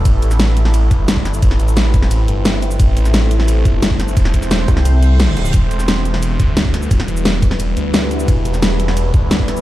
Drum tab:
RD |x---x---x---x---|x---x---x---x---|x---x---x---x---|x---x---x---x---|
HH |x-x-x-x-x-x-x-x-|x-x-x-x-x-x-x-x-|x-x-x-x-x-x-x-x-|x-x-x-x-x-x-x-x-|
SH |x-xxx-x-x-x-x-xx|x-xxx-x-x-x-x-xx|x-xxx-x-x-x-x-xx|x-xxx-x-x-x-x-xx|
SD |---oo--o----o-o-|-o--o--o----o---|---oo--o----o-o-|-o-oo--o----o---|
BD |o---------o--o--|o-----o---------|o---------o--o--|o-o---o---------|

RD |x---x---x---x---|x---x---x---x---|x---x---x---x---|
HH |x-x-x-x-x-x-x-x-|x-x-x-x-x-x-x-x-|x-x-x-x-x-x-x-x-|
SH |x-xxx-x-x-x-x-xx|x-xxx-x-x-x-x-xx|x-xxx-x-x-x-x-xx|
SD |---oo--o----o-o-|-o--o--o----o---|---oo--o----o-o-|
BD |o---------o--o--|o-----o---------|o---------o--o--|